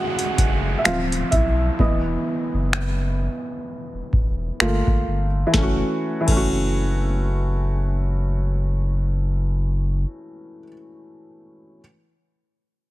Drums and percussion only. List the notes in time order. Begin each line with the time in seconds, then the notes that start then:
0.19 closed hi-hat
0.38 kick, closed hi-hat
0.85 finger snap, closed hi-hat
1.12 closed hi-hat
1.32 kick, closed hi-hat
1.79 kick
2.73 finger snap
4.13 kick
4.60 finger snap
4.87 kick
5.54 kick, snare
6.28 kick, crash